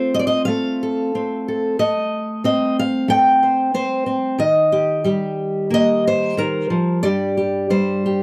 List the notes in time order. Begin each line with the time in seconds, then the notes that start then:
Already playing: A3 C4 F4 C5
0.14 D#5
0.19 D5
0.27 D#5
0.45 A3 F5
0.83 A4
1.15 C4
1.48 A4
1.79 A3 D#5
2.44 C4 D#5
2.79 F5
3.08 A3 G5
3.43 C5
3.74 C4 C5
4.06 C4
4.38 D#3 D#5
4.72 G4
5.04 G3 G4
5.70 A#3 D#5
6.07 C5
6.37 D#3 A#4
6.70 F3
7.03 G2 G3 G4 D5
7.37 G4
7.70 G3 C5
8.06 G4